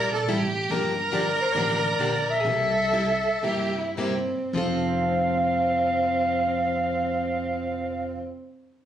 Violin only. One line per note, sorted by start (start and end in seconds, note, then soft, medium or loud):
0.00 0.13 A#4 loud
0.13 0.30 A4 loud
0.29 0.72 G4 loud
0.71 2.41 A#4 loud
2.40 2.48 G#4 medium
2.46 3.44 A4 loud
3.43 3.80 G4 medium
3.78 3.97 E4 medium
3.98 4.51 C4 medium
4.55 8.18 C4 medium